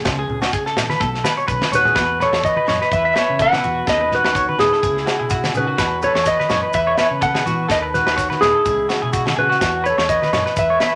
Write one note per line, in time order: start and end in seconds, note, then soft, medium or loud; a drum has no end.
0.00 1.98 E4 medium
0.05 0.25 C#2 loud
0.05 0.77 C#3 medium
0.05 muted clean electric guitar stroke medium
0.05 kick medium
0.05 snare medium
0.05 low agogo medium
0.05 maracas medium
0.19 0.41 G#4 medium
0.27 0.48 C#2 medium
0.27 low conga medium
0.42 0.52 F#4 medium
0.42 snare medium
0.42 low agogo medium
0.42 maracas soft
0.53 0.99 C#4 medium
0.53 0.66 G#4 medium
0.53 kick medium
0.53 maracas medium
0.66 0.89 A4 medium
0.66 snare soft
0.76 0.98 E3 medium
0.76 snare medium
0.76 low conga medium
0.76 low agogo medium
0.76 maracas medium
0.89 1.00 B4 medium
0.89 snare soft
0.89 high conga medium
0.89 maracas soft
1.00 1.20 B1 medium
1.00 1.73 B2 medium
1.00 1.23 A4 medium
1.00 kick medium
1.00 low conga medium
1.00 maracas medium
1.14 snare soft
1.24 1.37 B4 medium
1.24 snare medium
1.24 high conga medium
1.24 low agogo medium
1.24 maracas medium
1.37 1.47 C#5 medium
1.37 maracas soft
1.48 1.59 B1 medium
1.48 1.95 C#4 medium
1.48 1.71 B4 medium
1.48 kick medium
1.48 high conga soft
1.48 maracas medium
1.61 snare medium
1.61 high conga medium
1.61 low agogo medium
1.72 1.92 D#2 medium
1.72 1.94 D#3 medium
1.72 2.19 F#4 medium
1.72 2.19 B4 medium
1.72 1.85 C#5 medium
1.72 low conga medium
1.72 maracas loud
1.85 1.96 G#4 medium
1.85 low conga medium
1.85 maracas soft
1.95 2.27 E2 medium
1.95 2.67 E3 medium
1.95 3.16 B3 medium
1.95 2.19 B4 medium
1.95 muted nylon-string guitar stroke medium
1.95 kick medium
1.95 snare medium
1.95 low agogo medium
1.95 maracas medium
1.99 3.63 F#4 medium
2.20 2.44 A4 medium
2.20 2.33 B4 medium
2.20 2.44 C#5 medium
2.20 snare soft
2.20 low conga medium
2.20 maracas medium
2.31 2.52 E2 medium
2.31 2.56 C#5 medium
2.31 snare medium
2.31 low agogo medium
2.44 2.90 B4 medium
2.44 2.93 D#5 medium
2.44 kick medium
2.44 maracas medium
2.56 2.68 B4 medium
2.56 high conga medium
2.66 2.79 F#2 medium
2.66 3.85 E3 medium
2.66 2.81 C#5 medium
2.66 snare medium
2.66 low conga medium
2.66 low agogo medium
2.81 3.04 B4 medium
2.81 snare soft
2.92 3.12 E2 medium
2.92 3.16 B4 medium
2.92 3.15 E5 medium
2.92 kick medium
2.92 maracas medium
3.05 3.16 E5 medium
3.15 3.86 B3 medium
3.15 3.39 B4 medium
3.15 3.39 C#5 medium
3.15 3.39 E5 medium
3.15 snare medium
3.15 low agogo medium
3.15 maracas medium
3.29 3.58 C#3 medium
3.39 3.86 B2 medium
3.39 3.52 A4 medium
3.39 3.86 B4 medium
3.39 3.86 F#5 medium
3.39 kick medium
3.39 maracas medium
3.52 3.63 E4 medium
3.52 snare medium
3.52 high conga medium
3.52 low agogo medium
3.63 3.84 E2 medium
3.63 3.87 F#4 medium
3.63 3.85 F#4 medium
3.63 low conga medium
3.63 maracas medium
3.87 4.17 D#2 medium
3.87 4.81 D#3 medium
3.87 4.58 B3 medium
3.87 4.82 C#4 medium
3.87 4.82 F#4 medium
3.87 4.00 A4 medium
3.87 4.11 B4 medium
3.87 4.13 D#5 medium
3.87 kick medium
3.87 snare medium
3.87 low agogo medium
3.87 maracas medium
4.01 4.24 B4 medium
4.11 4.57 F#4 medium
4.11 4.58 B4 medium
4.11 snare soft
4.11 low conga medium
4.24 4.45 D#2 medium
4.24 4.35 B4 medium
4.24 snare medium
4.24 low agogo medium
4.35 4.48 C#5 medium
4.35 kick medium
4.35 maracas medium
4.49 4.71 B4 medium
4.49 high conga medium
4.59 4.70 D#2 medium
4.59 4.81 B3 medium
4.59 5.51 G#4 medium
4.59 snare medium
4.59 low conga medium
4.59 low agogo medium
4.59 maracas medium
4.63 5.53 E4 medium
4.73 4.82 A4 medium
4.73 snare soft
4.82 5.03 C#2 medium
4.82 5.30 C#3 medium
4.82 5.06 G#4 medium
4.82 kick medium
4.82 maracas medium
4.97 snare soft
5.06 5.19 F#4 medium
5.06 snare medium
5.06 low agogo medium
5.06 maracas medium
5.19 5.49 B2 medium
5.19 5.30 G#4 medium
5.30 5.56 C#3 medium
5.30 5.53 F#4 medium
5.30 kick medium
5.30 maracas medium
5.44 snare medium
5.44 high conga medium
5.44 low agogo medium
5.54 5.74 C#3 medium
5.54 5.79 D#3 medium
5.54 5.67 G#4 medium
5.54 6.04 B4 medium
5.54 low conga medium
5.54 maracas medium
5.58 6.01 F#4 medium
5.67 5.78 F#4 medium
5.78 6.09 E2 medium
5.78 7.70 E2 medium
5.78 6.50 E3 medium
5.78 7.47 F#4 medium
5.78 6.01 B4 medium
5.78 muted nylon-string guitar stroke medium
5.78 kick medium
5.78 snare medium
5.78 low agogo medium
5.78 maracas medium
6.02 6.26 A4 medium
6.02 6.15 B4 medium
6.02 6.28 C#5 medium
6.02 low conga medium
6.02 maracas medium
6.15 6.35 E2 medium
6.15 6.38 C#5 medium
6.15 snare medium
6.15 low agogo medium
6.26 6.74 D#5 medium
6.26 kick medium
6.26 snare soft
6.26 maracas medium
6.30 6.73 B4 medium
6.40 6.49 B4 medium
6.40 snare soft
6.40 high conga medium
6.49 6.61 F#2 medium
6.49 7.68 E3 medium
6.49 6.62 C#5 medium
6.49 snare medium
6.49 low conga medium
6.49 low agogo medium
6.49 maracas medium
6.63 6.86 B4 medium
6.73 6.94 E2 medium
6.73 6.98 B4 medium
6.73 6.97 E5 medium
6.73 kick medium
6.73 maracas medium
6.87 6.98 C#5 medium
6.98 7.68 B3 medium
6.98 7.21 B4 medium
6.98 7.05 E5 medium
6.98 snare medium
6.98 low agogo medium
6.98 maracas medium
7.02 7.12 C#5 medium
7.11 7.40 C#3 medium
7.21 7.67 B2 medium
7.21 7.34 A4 medium
7.21 7.68 B4 medium
7.21 7.67 F#5 medium
7.21 kick medium
7.21 maracas medium
7.34 7.45 G#4 medium
7.34 snare medium
7.34 high conga medium
7.34 low agogo medium
7.46 7.66 E3 medium
7.46 7.68 F#4 medium
7.46 7.69 F#4 medium
7.46 low conga medium
7.46 maracas medium
7.69 8.00 D#2 loud
7.69 8.64 D#3 medium
7.69 7.82 A4 medium
7.69 7.82 B4 medium
7.69 7.78 D#5 medium
7.69 kick medium
7.69 snare medium
7.69 low agogo medium
7.69 maracas medium
7.82 8.05 B4 medium
7.94 8.40 F#4 medium
7.94 8.44 B4 medium
7.94 snare soft
7.94 high conga medium
7.94 low conga medium
7.94 maracas medium
8.07 8.27 D#2 medium
8.07 8.16 B4 medium
8.07 snare medium
8.07 low agogo medium
8.17 8.29 C#5 medium
8.17 kick medium
8.17 snare soft
8.17 maracas medium
8.30 8.53 B4 medium
8.30 snare soft
8.30 high conga medium
8.41 8.53 D#2 medium
8.41 8.63 B3 medium
8.41 9.35 E4 medium
8.41 9.33 G#4 medium
8.41 snare medium
8.41 low conga medium
8.41 low agogo medium
8.41 maracas medium
8.54 8.65 A4 medium
8.65 8.85 C#2 medium
8.65 9.38 C#3 medium
8.65 9.37 E3 medium
8.65 9.59 G#3 medium
8.65 9.60 C#4 medium
8.65 8.88 G#4 medium
8.65 muted nylon-string guitar stroke medium
8.65 kick medium
8.65 low conga medium
8.65 maracas medium
8.89 9.02 F#4 medium
8.89 snare medium
8.89 low agogo medium
8.89 maracas medium
9.02 9.31 B2 medium
9.02 9.12 G#4 medium
9.13 9.36 F#4 medium
9.13 kick medium
9.13 maracas medium
9.26 snare medium
9.26 high conga medium
9.26 low agogo medium
9.36 9.57 C#3 medium
9.36 9.59 E3 medium
9.36 9.83 F#4 medium
9.36 9.49 G#4 medium
9.36 9.83 B4 medium
9.36 low conga medium
9.50 9.60 F#4 medium
9.50 snare soft
9.61 9.92 E2 loud
9.61 10.95 E2 medium
9.61 10.80 B3 medium
9.61 9.84 F#4 medium
9.61 10.95 F#4 medium
9.61 muted nylon-string guitar stroke medium
9.61 kick medium
9.61 snare medium
9.61 low agogo medium
9.61 maracas medium
9.84 9.97 B4 medium
9.84 10.08 C#5 medium
9.84 maracas medium
9.88 10.09 A4 medium
9.98 10.18 E2 medium
9.98 10.21 C#5 medium
9.98 snare medium
9.98 low agogo medium
10.09 10.54 B4 medium
10.09 10.54 D#5 medium
10.09 kick medium
10.09 maracas medium
10.22 10.33 B4 medium
10.22 snare soft
10.22 high conga medium
10.32 10.43 F#2 medium
10.32 10.95 E3 medium
10.32 10.46 C#5 medium
10.32 snare medium
10.32 low conga medium
10.32 low agogo medium
10.32 maracas medium
10.46 10.69 B4 medium
10.46 snare soft
10.56 10.76 E2 medium
10.56 10.80 B4 medium
10.56 10.80 E5 medium
10.56 kick medium
10.56 maracas medium
10.70 10.80 C#5 medium
10.80 10.95 B3 medium
10.80 10.95 B4 medium
10.80 10.95 C#5 medium
10.80 10.95 E5 medium
10.80 snare medium
10.80 low agogo medium
10.80 maracas medium